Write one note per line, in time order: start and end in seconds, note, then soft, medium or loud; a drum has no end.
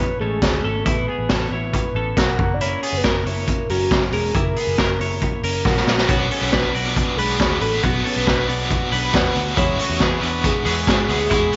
0.00 0.18 E4 soft
0.00 0.17 B4 loud
0.00 0.18 C#5 medium
0.20 0.38 A1 medium
0.20 0.62 A3 medium
0.20 0.62 C#4 medium
0.20 0.65 G#4 medium
0.42 0.60 D2 medium
0.42 kick loud
0.42 snare loud
0.42 closed hi-hat medium
0.64 0.82 G#1 medium
0.64 0.86 C#4 soft
0.64 0.86 A4 medium
0.64 0.85 A4 medium
0.85 1.04 A1 loud
0.85 1.08 A3 medium
0.85 1.08 E4 loud
0.85 2.17 B4 loud
0.85 kick loud
0.85 closed hi-hat medium
1.08 1.30 B3 soft
1.08 1.30 G#4 medium
1.18 1.27 A1 medium
1.29 1.47 A1 medium
1.29 1.52 C#4 medium
1.29 1.52 A4 medium
1.29 kick medium
1.29 snare medium
1.29 closed hi-hat medium
1.51 1.78 A1 medium
1.51 1.93 E4 medium
1.51 1.93 C#5 medium
1.73 kick medium
1.73 closed hi-hat medium
1.95 2.13 A1 loud
1.95 2.18 C#4 soft
1.95 2.17 A4 medium
2.16 2.35 B1 medium
2.16 2.58 A#3 medium
2.16 2.58 F#4 medium
2.16 2.53 A#4 medium
2.16 kick loud
2.16 snare medium
2.16 closed hi-hat medium
2.39 2.74 F#1 medium
2.39 kick loud
2.54 2.62 D5 medium
2.61 2.83 A#3 medium
2.61 2.83 E4 medium
2.61 2.98 C#5 loud
2.61 closed hi-hat medium
2.83 3.05 B3 soft
2.83 3.04 G#4 medium
2.83 open hi-hat medium
2.93 3.02 F#1 medium
2.97 3.07 B4 medium
3.04 3.26 C#4 medium
3.04 3.26 A#4 medium
3.04 3.37 A#4 loud
3.04 kick medium
3.04 snare medium
3.04 closed hi-hat medium
3.26 3.52 F#1 medium
3.26 3.67 E4 soft
3.26 3.67 C#5 medium
3.26 open hi-hat medium
3.37 3.71 A#4 loud
3.47 kick medium
3.47 closed hi-hat medium
3.69 3.87 F#1 medium
3.69 4.11 C#4 medium
3.69 4.14 F#4 medium
3.69 4.11 A#4 medium
3.69 open hi-hat medium
3.91 4.09 F#1 medium
3.91 kick loud
3.91 snare loud
3.91 closed hi-hat medium
4.12 4.30 E1 medium
4.12 4.35 C#4 soft
4.12 4.35 G#4 medium
4.12 4.35 A#4 medium
4.12 open hi-hat medium
4.34 4.52 F#1 loud
4.34 4.57 A#3 medium
4.34 4.57 E4 medium
4.34 5.62 A#4 medium
4.34 kick loud
4.34 closed hi-hat medium
4.56 4.79 B3 soft
4.56 4.78 G#4 medium
4.56 open hi-hat medium
4.67 4.76 F#1 medium
4.78 4.96 F#1 medium
4.78 5.01 C#4 medium
4.78 5.00 A#4 medium
4.78 kick medium
4.78 snare medium
4.78 closed hi-hat medium
5.00 5.27 F#1 medium
5.00 5.42 E4 soft
5.00 5.42 C#5 medium
5.00 open hi-hat medium
5.22 kick medium
5.22 closed hi-hat medium
5.43 5.61 F#1 medium
5.43 5.66 C#4 soft
5.43 5.66 A#4 medium
5.43 open hi-hat medium
5.65 5.83 A#1 medium
5.65 6.07 A#3 medium
5.65 6.06 F#4 medium
5.65 6.10 A#4 medium
5.65 kick loud
5.65 snare soft
5.77 snare soft
5.87 6.05 A#1 medium
5.87 snare medium
5.98 snare medium
6.07 6.27 B1 medium
6.07 6.41 B2 medium
6.07 6.41 F#3 medium
6.07 6.31 B3 medium
6.07 6.41 D4 medium
6.07 6.41 F#4 medium
6.07 6.31 F#4 medium
6.07 6.40 B4 medium
6.07 6.53 C#5 medium
6.07 kick loud
6.07 closed hi-hat medium
6.31 6.53 C#4 soft
6.31 6.52 A4 medium
6.31 open hi-hat medium
6.41 6.51 B1 medium
6.41 6.73 D4 soft
6.41 6.74 F#4 soft
6.41 6.74 B4 soft
6.52 6.70 B1 medium
6.52 6.75 D4 medium
6.52 6.84 B4 loud
6.52 6.74 B4 medium
6.52 kick medium
6.52 snare medium
6.52 closed hi-hat medium
6.74 7.01 B1 medium
6.74 7.17 F#3 medium
6.74 7.17 D4 medium
6.74 7.19 F#4 medium
6.74 7.16 F#4 medium
6.74 7.19 B4 medium
6.74 7.16 D5 medium
6.74 open hi-hat medium
6.85 7.19 B4 medium
6.96 kick medium
6.96 closed hi-hat medium
7.17 7.36 B1 loud
7.17 7.39 F#3 medium
7.17 7.39 D4 medium
7.17 7.60 D4 medium
7.17 7.40 F#4 medium
7.17 7.61 G#4 medium
7.17 7.59 B4 medium
7.17 7.40 B4 medium
7.17 open hi-hat medium
7.39 7.57 D2 medium
7.39 7.72 D4 medium
7.39 7.72 F#4 medium
7.39 7.71 B4 medium
7.39 kick loud
7.39 snare medium
7.39 closed hi-hat medium
7.61 7.79 A1 medium
7.61 7.83 D4 soft
7.61 7.82 A4 medium
7.61 7.83 B4 medium
7.61 open hi-hat medium
7.72 7.82 D4 soft
7.72 7.83 F#4 soft
7.72 7.83 B4 soft
7.83 8.01 B1 medium
7.83 8.16 B2 medium
7.83 8.16 F#3 medium
7.83 8.04 B3 medium
7.83 8.16 D4 medium
7.83 8.05 F#4 medium
7.83 8.15 F#4 medium
7.83 9.10 B4 loud
7.83 8.14 B4 medium
7.83 kick medium
7.83 closed hi-hat medium
8.04 8.27 C#4 medium
8.04 8.27 A4 medium
8.04 open hi-hat medium
8.16 8.25 B1 medium
8.16 8.47 D4 soft
8.16 8.47 F#4 soft
8.16 8.47 B4 soft
8.27 8.45 B1 medium
8.27 8.49 D4 medium
8.27 8.48 B4 medium
8.27 kick medium
8.27 snare medium
8.27 closed hi-hat medium
8.47 8.75 B1 medium
8.47 8.91 F#3 medium
8.47 8.91 D4 medium
8.47 8.92 F#4 medium
8.47 8.90 F#4 medium
8.47 8.93 B4 medium
8.47 8.90 D5 medium
8.47 open hi-hat medium
8.71 kick medium
8.71 closed hi-hat medium
8.91 9.10 B1 medium
8.91 9.12 F#3 medium
8.91 9.13 D4 medium
8.91 9.13 D4 soft
8.91 9.14 F#4 medium
8.91 9.14 B4 medium
8.91 open hi-hat medium
9.13 9.31 E2 medium
9.13 9.46 F#3 medium
9.13 9.55 B3 medium
9.13 9.46 D4 medium
9.13 9.55 F#4 medium
9.13 9.45 F#4 medium
9.13 9.54 B4 medium
9.13 9.44 B4 medium
9.13 kick loud
9.13 snare loud
9.13 closed hi-hat medium
9.35 9.53 D2 medium
9.35 open hi-hat medium
9.45 9.56 D4 soft
9.45 9.56 F#4 soft
9.45 9.57 B4 soft
9.56 9.75 E2 medium
9.56 9.89 E3 medium
9.56 9.89 G#3 medium
9.56 9.80 G#3 medium
9.56 9.89 B3 medium
9.56 9.89 E4 medium
9.56 9.79 E4 medium
9.56 9.88 F#4 medium
9.56 10.03 C#5 loud
9.56 kick loud
9.56 closed hi-hat medium
9.79 10.01 A3 soft
9.79 10.01 F#4 medium
9.79 open hi-hat medium
9.89 9.99 E2 medium
9.89 10.20 B3 soft
9.89 10.21 E4 soft
9.89 10.21 F#4 soft
10.00 10.19 E2 medium
10.00 10.23 B3 medium
10.00 10.21 G#4 medium
10.00 10.47 B4 loud
10.00 kick medium
10.00 snare medium
10.00 closed hi-hat medium
10.21 10.49 E2 medium
10.21 10.64 G#3 medium
10.21 10.65 B3 medium
10.21 10.63 D4 medium
10.21 10.66 E4 medium
10.21 10.66 F#4 medium
10.21 10.63 B4 medium
10.21 open hi-hat medium
10.44 11.56 G#4 loud
10.44 kick medium
10.44 closed hi-hat medium
10.65 10.83 E2 medium
10.65 10.86 G#3 medium
10.65 10.87 B3 medium
10.65 11.07 B3 medium
10.65 10.87 E4 medium
10.65 10.88 F#4 medium
10.65 11.06 G#4 medium
10.65 open hi-hat medium
10.87 11.05 G#2 medium
10.87 11.20 G#3 medium
10.87 11.20 B3 medium
10.87 11.19 E4 medium
10.87 11.19 F#4 medium
10.87 kick loud
10.87 snare loud
10.87 closed hi-hat medium
11.09 11.27 D2 medium
11.09 11.31 B3 medium
11.09 11.30 G#4 medium
11.09 open hi-hat medium
11.20 11.30 B3 soft
11.20 11.30 E4 soft
11.20 11.31 F#4 soft
11.30 11.49 E2 loud
11.30 11.56 E3 medium
11.30 11.52 G#3 medium
11.30 11.56 G#3 medium
11.30 11.56 B3 medium
11.30 11.52 E4 medium
11.30 11.56 E4 medium
11.30 11.56 F#4 medium
11.30 kick medium
11.30 closed hi-hat medium
11.52 11.56 A3 medium
11.52 11.56 F#4 medium
11.52 open hi-hat medium